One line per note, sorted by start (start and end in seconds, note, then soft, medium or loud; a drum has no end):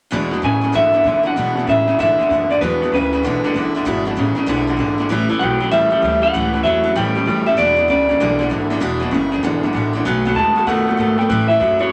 0.11 0.31 E2 medium
0.11 0.30 E2 medium
0.11 0.42 E2 medium
0.11 0.32 B2 medium
0.11 0.30 B2 medium
0.11 0.32 E3 medium
0.11 0.32 G#3 loud
0.11 0.32 D4 loud
0.11 0.30 E4 loud
0.31 0.42 E2 medium
0.31 0.42 B2 medium
0.31 0.41 E3 soft
0.31 0.42 G#3 medium
0.31 0.43 D4 medium
0.31 0.43 E4 medium
0.42 0.61 E2 medium
0.42 0.73 A2 loud
0.42 0.62 C#3 medium
0.42 0.63 E3 medium
0.42 0.63 G#3 medium
0.42 0.61 D4 medium
0.42 0.60 E4 medium
0.42 0.75 G#5 loud
0.61 0.74 E2 medium
0.61 0.74 C#3 medium
0.61 0.72 E3 soft
0.61 0.73 G#3 soft
0.61 0.73 D4 soft
0.61 0.74 E4 medium
0.72 0.93 E2 medium
0.72 1.04 G#2 medium
0.72 0.94 B2 medium
0.72 0.93 D3 medium
0.72 0.94 E3 medium
0.72 0.93 G#3 medium
0.72 0.93 D4 medium
0.72 0.91 E4 medium
0.72 1.23 E5 loud
0.93 1.04 E2 medium
0.93 1.05 D3 medium
0.93 1.03 E3 soft
0.93 1.04 G#3 soft
0.93 1.05 D4 soft
0.93 1.05 E4 soft
1.04 1.23 E2 medium
1.04 1.35 C#3 loud
1.04 1.24 D3 medium
1.04 1.25 E3 medium
1.04 1.25 G#3 medium
1.04 1.24 D4 medium
1.08 1.22 E4 medium
1.23 1.34 E2 medium
1.23 1.35 D3 medium
1.23 1.36 E3 soft
1.23 1.37 G#3 soft
1.23 1.37 D4 soft
1.23 1.36 E4 medium
1.23 1.69 F#5 medium
1.35 1.54 E2 medium
1.35 1.56 E2 medium
1.35 1.54 B2 medium
1.35 1.67 B2 medium
1.35 1.57 B2 medium
1.35 1.57 E3 medium
1.35 1.57 G#3 medium
1.35 1.58 D4 medium
1.35 1.56 E4 medium
1.55 1.65 E2 medium
1.55 1.66 B2 medium
1.55 1.68 G#3 soft
1.55 1.68 D4 soft
1.55 1.68 E4 medium
1.60 1.66 E3 soft
1.66 1.85 E2 medium
1.66 1.98 A2 loud
1.66 1.85 C#3 medium
1.66 1.87 E3 medium
1.66 1.88 G#3 medium
1.66 1.87 D4 medium
1.66 1.99 E5 loud
1.71 1.86 E4 medium
1.87 1.97 E2 medium
1.87 1.98 C#3 medium
1.87 1.99 G#3 soft
1.87 1.99 D4 medium
1.87 1.99 E4 medium
1.91 1.99 E3 soft
1.98 2.17 E2 medium
1.98 2.19 E2 medium
1.98 2.17 G#2 medium
1.98 2.19 B2 medium
1.98 2.17 D3 medium
1.98 2.20 E3 medium
1.98 2.20 G#3 medium
1.98 2.20 D4 medium
1.98 2.18 E4 medium
1.98 2.47 E5 loud
2.19 2.28 E2 medium
2.19 2.29 D3 medium
2.19 2.31 G#3 soft
2.19 2.31 D4 soft
2.19 2.30 E4 medium
2.19 muted upright bass stroke soft
2.30 2.48 E2 medium
2.30 2.60 F#2 loud
2.30 2.48 D3 medium
2.30 2.50 E3 medium
2.30 2.51 G#3 medium
2.30 2.51 D4 medium
2.34 2.49 E4 medium
2.50 2.60 E2 medium
2.50 2.60 D3 medium
2.50 2.62 G#3 soft
2.50 2.62 D4 soft
2.50 2.61 E4 medium
2.50 2.61 D5 medium
2.54 2.61 E3 soft
2.61 2.91 E2 medium
2.61 2.79 E2 medium
2.61 2.81 E2 medium
2.61 2.79 B2 medium
2.61 2.81 B2 medium
2.61 2.82 E3 medium
2.61 2.82 G#3 medium
2.61 2.82 D4 medium
2.61 2.81 E4 medium
2.61 2.93 B4 medium
2.81 2.91 E2 medium
2.81 2.91 B2 medium
2.81 2.94 G#3 soft
2.81 2.94 D4 soft
2.81 2.93 E4 medium
2.86 2.92 E3 medium
2.92 3.22 D2 loud
2.92 3.10 E2 medium
2.92 3.10 C#3 loud
2.92 3.13 E3 medium
2.92 3.14 G#3 medium
2.92 3.51 B4 medium
2.96 3.13 D4 medium
2.96 3.12 E4 medium
3.12 3.22 E2 medium
3.12 3.23 C#3 medium
3.12 3.23 E3 soft
3.12 3.24 G#3 soft
3.12 3.24 D4 medium
3.12 3.24 E4 medium
3.23 3.41 B1 medium
3.23 3.43 E2 medium
3.23 3.42 E2 medium
3.23 3.44 B2 medium
3.23 3.42 D3 loud
3.23 3.44 E3 medium
3.23 3.44 G#3 medium
3.23 3.43 D4 medium
3.23 3.43 E4 medium
3.43 3.53 E2 medium
3.43 3.54 D3 loud
3.43 3.55 G#3 medium
3.43 3.55 D4 medium
3.43 3.55 E4 medium
3.43 muted upright bass stroke soft
3.47 3.53 E3 medium
3.54 3.84 F#1 medium
3.54 3.73 E2 medium
3.54 3.73 D3 medium
3.54 3.74 E3 medium
3.54 3.75 G#3 medium
3.54 3.75 D4 medium
3.58 3.73 E4 medium
3.75 3.85 E2 medium
3.75 3.85 D3 medium
3.75 3.85 E3 soft
3.75 3.86 G#3 medium
3.75 3.86 D4 medium
3.75 3.86 E4 medium
3.85 4.15 G#1 medium
3.85 4.05 E2 medium
3.85 4.04 E2 medium
3.85 4.05 B2 medium
3.85 4.04 B2 medium
3.85 4.05 E3 loud
3.85 4.06 G#3 loud
3.85 4.05 D4 medium
3.85 4.04 E4 medium
4.05 4.16 E2 medium
4.05 4.16 B2 medium
4.05 4.14 E3 soft
4.05 4.15 G#3 medium
4.05 4.16 D4 medium
4.05 4.16 E4 medium
4.15 4.35 A1 loud
4.15 4.35 E2 medium
4.15 4.35 C#3 medium
4.15 4.36 E3 medium
4.15 4.36 G#3 medium
4.15 4.35 D4 medium
4.15 4.34 E4 medium
4.35 4.47 E2 medium
4.35 4.47 C#3 medium
4.35 4.47 E3 medium
4.35 4.47 G#3 medium
4.35 4.47 D4 medium
4.35 4.47 E4 medium
4.46 4.77 B1 medium
4.46 4.67 E2 medium
4.46 4.66 E2 medium
4.46 4.67 B2 medium
4.46 4.66 D3 loud
4.46 4.67 E3 medium
4.46 4.67 G#3 loud
4.46 4.67 D4 medium
4.46 4.66 E4 loud
4.67 4.78 E2 medium
4.67 4.78 D3 medium
4.67 4.76 E3 soft
4.67 4.77 G#3 medium
4.67 4.79 D4 medium
4.67 4.78 E4 medium
4.77 5.08 G#1 medium
4.77 4.97 E2 medium
4.77 4.97 D3 loud
4.77 4.97 E3 medium
4.77 4.98 G#3 medium
4.77 4.98 D4 medium
4.77 4.97 E4 medium
4.98 5.09 E2 medium
4.98 5.09 D3 medium
4.98 5.09 E3 soft
4.98 5.10 G#3 medium
4.98 5.10 D4 medium
4.98 5.09 E4 medium
5.09 5.28 A1 medium
5.09 5.29 A2 loud
5.09 5.28 A2 medium
5.09 5.29 E3 medium
5.09 5.28 E3 medium
5.09 5.29 G3 medium
5.09 5.29 C#4 medium
5.09 5.28 E4 loud
5.29 5.39 A2 medium
5.29 5.40 E3 medium
5.29 5.39 G3 medium
5.29 5.41 C#4 medium
5.29 5.40 E4 medium
5.39 5.71 B1 loud
5.39 5.59 A2 medium
5.39 5.60 E3 medium
5.39 5.59 F#3 loud
5.39 5.60 G3 medium
5.39 5.61 C#4 medium
5.39 5.59 E4 medium
5.39 5.71 G5 loud
5.60 5.70 A2 medium
5.60 5.70 F#3 medium
5.60 5.71 G3 soft
5.60 5.72 C#4 medium
5.60 5.71 E4 medium
5.71 5.90 C#2 medium
5.71 5.91 A2 medium
5.71 5.89 A2 medium
5.71 5.91 E3 medium
5.71 5.89 G3 medium
5.71 5.92 G3 medium
5.71 5.91 C#4 medium
5.71 5.89 E4 medium
5.71 6.19 E5 loud
5.90 6.01 A2 medium
5.90 6.01 G3 medium
5.90 6.01 G3 soft
5.90 6.03 C#4 soft
5.90 6.02 E4 medium
5.90 muted upright bass stroke soft
6.01 6.32 D2 loud
6.01 6.20 A2 medium
6.01 6.22 E3 medium
6.01 6.20 G3 medium
6.01 6.22 G3 medium
6.01 6.23 C#4 medium
6.01 6.21 E4 medium
6.22 6.32 A2 medium
6.22 6.32 G3 medium
6.22 6.34 G3 soft
6.22 6.34 C#4 soft
6.22 6.33 E4 medium
6.22 6.62 F#5 loud
6.34 6.64 C#2 medium
6.34 6.51 A2 medium
6.34 6.53 A2 medium
6.34 6.51 E3 medium
6.34 6.54 E3 medium
6.34 6.54 G3 medium
6.34 6.54 C#4 medium
6.34 6.52 E4 medium
6.53 6.63 A2 medium
6.53 6.63 E3 medium
6.53 6.65 C#4 medium
6.53 6.64 E4 medium
6.57 6.64 G3 soft
6.64 6.95 E2 loud
6.64 6.82 A2 medium
6.64 6.84 E3 medium
6.64 6.82 F#3 loud
6.64 6.84 G3 medium
6.64 6.84 C#4 medium
6.64 6.82 E4 medium
6.64 6.93 E5 loud
6.84 6.94 A2 medium
6.84 6.94 F#3 medium
6.84 6.95 G3 soft
6.84 6.96 C#4 medium
6.84 6.95 E4 medium
6.96 7.15 A2 medium
6.96 7.13 A2 medium
6.96 7.26 A2 medium
6.96 7.15 E3 medium
6.96 7.13 G3 medium
6.96 7.16 G3 medium
6.96 7.16 C#4 medium
6.96 7.14 E4 medium
6.96 7.46 G5 loud
7.15 7.25 A2 medium
7.15 7.26 G3 medium
7.15 7.26 G3 soft
7.15 7.27 C#4 soft
7.15 7.26 E4 medium
7.26 7.56 F#2 loud
7.26 7.44 A2 medium
7.26 7.46 E3 medium
7.26 7.45 G3 medium
7.26 7.47 G3 medium
7.26 7.47 C#4 medium
7.30 7.45 E4 medium
7.46 7.56 A2 medium
7.46 7.57 G3 medium
7.46 7.58 G3 soft
7.46 7.58 C#4 soft
7.46 7.57 E4 medium
7.46 7.58 E5 medium
7.57 7.77 E2 medium
7.57 7.87 E2 medium
7.57 7.76 E2 medium
7.57 7.77 B2 medium
7.57 7.76 B2 medium
7.57 7.77 E3 medium
7.57 7.78 G#3 medium
7.57 7.77 D4 medium
7.57 7.75 E4 medium
7.57 7.89 D5 medium
7.77 7.88 E2 medium
7.77 7.88 B2 medium
7.77 7.87 E3 soft
7.77 7.88 G#3 soft
7.77 7.89 D4 medium
7.77 7.88 E4 medium
7.88 8.18 C#2 loud
7.88 8.07 E2 medium
7.88 8.07 C#3 medium
7.88 8.08 E3 medium
7.88 8.09 G#3 medium
7.88 8.09 D4 medium
7.88 8.08 E4 medium
7.88 8.47 D5 medium
8.09 8.19 E2 medium
8.09 8.19 C#3 medium
8.09 8.20 E3 soft
8.09 8.20 G#3 medium
8.09 8.20 D4 medium
8.09 8.20 E4 medium
8.19 8.49 B1 medium
8.19 8.37 E2 medium
8.19 8.40 E2 medium
8.19 8.40 B2 medium
8.19 8.38 D3 loud
8.19 8.40 E3 medium
8.19 8.40 G#3 medium
8.19 8.39 D4 medium
8.19 8.38 E4 loud
8.39 8.49 E2 medium
8.39 8.49 D3 loud
8.39 8.49 E3 soft
8.39 8.50 G#3 medium
8.39 8.51 D4 medium
8.39 8.50 E4 medium
8.50 8.80 G#1 medium
8.50 8.69 E2 medium
8.50 8.69 D3 loud
8.50 8.70 E3 medium
8.50 8.70 G#3 medium
8.50 8.70 D4 medium
8.50 8.69 E4 medium
8.70 8.80 E2 medium
8.70 8.80 D3 medium
8.70 8.80 E3 medium
8.70 8.80 G#3 medium
8.70 8.81 D4 medium
8.70 8.81 E4 medium
8.80 9.11 E1 medium
8.80 9.01 E2 medium
8.80 8.99 E2 medium
8.80 9.01 B2 medium
8.80 8.99 B2 medium
8.80 9.01 E3 medium
8.80 9.01 G#3 loud
8.80 9.00 D4 medium
8.80 8.99 E4 loud
9.00 9.11 E2 medium
9.00 9.11 B2 medium
9.00 9.10 E3 medium
9.00 9.11 G#3 medium
9.00 9.12 D4 medium
9.00 9.12 E4 medium
9.11 9.42 F#1 medium
9.11 9.30 E2 medium
9.11 9.30 C#3 loud
9.11 9.32 E3 medium
9.11 9.32 G#3 medium
9.11 9.32 D4 medium
9.11 9.30 E4 medium
9.31 9.42 E2 medium
9.31 9.42 C#3 medium
9.31 9.43 G#3 medium
9.31 9.43 D4 medium
9.31 9.43 E4 medium
9.36 9.43 E3 soft
9.43 9.73 G#1 medium
9.43 9.63 E2 medium
9.43 9.61 E2 medium
9.43 9.63 B2 medium
9.43 9.61 D3 medium
9.43 9.64 E3 medium
9.43 9.64 G#3 medium
9.43 9.63 D4 medium
9.43 9.62 E4 loud
9.63 9.72 E2 medium
9.63 9.73 D3 medium
9.63 9.72 E3 soft
9.63 9.73 G#3 medium
9.63 9.75 D4 medium
9.63 9.74 E4 medium
9.73 10.04 A1 medium
9.73 9.92 E2 medium
9.73 9.92 D3 medium
9.73 9.93 E3 medium
9.73 9.94 G#3 medium
9.73 9.94 D4 medium
9.77 9.92 E4 medium
9.93 10.04 E2 medium
9.93 10.05 D3 medium
9.93 10.05 E3 soft
9.93 10.06 G#3 medium
9.93 10.06 D4 medium
9.93 10.05 E4 medium
10.05 10.34 B1 medium
10.05 10.25 B2 medium
10.05 10.23 B2 medium
10.05 10.25 D#3 medium
10.05 10.23 F#3 loud
10.05 10.26 A3 medium
10.05 10.25 B3 loud
10.05 10.24 F#4 loud
10.25 10.35 B2 medium
10.25 10.36 F#3 medium
10.25 10.36 A3 soft
10.25 10.37 B3 medium
10.25 10.36 F#4 medium
10.35 10.66 D#2 loud
10.35 10.54 B2 medium
10.35 10.56 D#3 soft
10.35 10.54 G#3 medium
10.35 10.57 A3 medium
10.35 10.57 B3 medium
10.35 10.54 F#4 medium
10.35 10.67 A5 loud
10.56 10.66 B2 medium
10.56 10.67 G#3 medium
10.56 10.68 A3 soft
10.56 10.68 B3 medium
10.56 10.67 F#4 medium
10.66 10.97 F#2 medium
10.66 10.87 B2 medium
10.66 10.85 B2 medium
10.66 10.88 D#3 medium
10.66 10.85 A3 medium
10.66 10.88 A3 medium
10.66 10.87 B3 medium
10.66 10.85 F#4 medium
10.66 11.18 F#5 loud
10.87 10.97 B2 medium
10.87 10.98 A3 medium
10.87 10.97 A3 soft
10.87 10.99 B3 soft
10.87 10.98 F#4 medium
10.97 11.28 G#2 medium
10.97 11.16 B2 medium
10.97 11.18 D#3 medium
10.97 11.18 A3 medium
10.97 11.16 A3 medium
10.97 11.19 B3 medium
10.97 11.17 F#4 medium
11.17 11.28 B2 medium
11.17 11.28 A3 medium
11.17 11.31 B3 soft
11.17 11.29 F#4 medium
11.17 11.47 G5 loud
11.22 11.31 A3 soft
11.29 11.47 A2 medium
11.29 11.60 A2 medium
11.29 11.49 A2 medium
11.29 11.47 E3 medium
11.29 11.49 E3 medium
11.29 11.50 G3 medium
11.29 11.50 C#4 medium
11.29 11.48 E4 medium
11.48 11.59 A2 medium
11.48 11.59 E3 medium
11.48 11.61 C#4 medium
11.48 11.61 E4 medium
11.48 11.81 E5 loud
11.53 11.60 G3 soft
11.60 11.90 F#2 loud
11.60 11.78 A2 medium
11.60 11.80 E3 medium
11.60 11.78 F#3 medium
11.60 11.81 G3 medium
11.60 11.79 C#4 medium
11.60 11.78 E4 medium
11.79 11.90 A2 medium
11.79 11.90 F#3 medium
11.79 11.92 G3 soft
11.79 11.92 C#4 soft
11.79 11.91 E4 medium
11.79 11.92 C#5 loud